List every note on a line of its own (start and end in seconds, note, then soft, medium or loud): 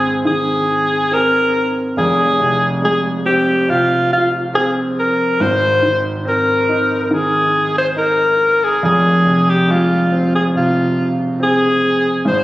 0.00 1.92 G#1 medium
0.00 1.92 G#2 medium
0.00 0.24 D#3 medium
0.00 1.06 G#3 medium
0.00 1.10 C4 medium
0.00 0.22 G#4 loud
0.25 1.92 D#3 medium
0.25 1.15 G#4 medium
1.12 1.94 C4 medium
1.12 1.71 A#4 loud
1.97 5.35 F1 medium
1.97 5.35 F2 medium
1.97 2.79 G#4 loud
2.40 3.67 C3 medium
2.82 4.49 G#3 medium
2.82 3.01 G#4 medium
3.25 4.53 C4 medium
3.25 3.72 G4 medium
3.69 5.35 C3 soft
3.69 4.12 F4 loud
4.13 4.29 F4 medium
4.54 5.37 C4 medium
4.54 4.71 G#4 loud
4.99 5.43 A#4 loud
5.40 8.78 G#1 medium
5.40 8.79 G#2 medium
5.40 5.99 C5 loud
5.82 7.09 D#3 medium
6.25 7.92 C4 medium
6.25 7.01 A#4 loud
6.69 7.94 D#4 medium
7.04 7.15 A#4 medium
7.11 8.78 D#3 medium
7.11 7.76 G#4 loud
7.78 7.87 C5 medium
7.96 8.79 D#4 medium
7.96 8.65 A#4 loud
8.64 8.84 G#4 loud
8.83 12.21 F1 medium
8.83 12.21 F2 medium
8.83 9.51 G#4 loud
9.26 10.54 C3 medium
9.50 9.73 G4 medium
9.68 11.35 G#3 medium
9.68 10.34 F4 loud
10.12 11.38 C4 medium
10.35 10.44 G#4 medium
10.55 12.22 C3 medium
10.55 11.10 F4 medium
11.40 12.22 C4 medium
11.40 12.23 G#4 loud
12.25 12.44 G#1 medium
12.25 12.44 G#2 medium
12.25 12.44 C5 loud